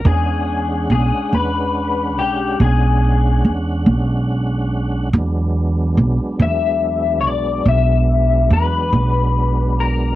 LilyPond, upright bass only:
\new Staff \with { instrumentName = "Upright bass" } { \clef bass \time 12/8 \key e \mixolydian \tempo 4. = 47 e,4 b,,16 r16 e,4 b,,8 b,,4 e,8 b,,4. | e,4 b,,16 r16 e,4 b,,8 b,,4 e,8 b,,4. | }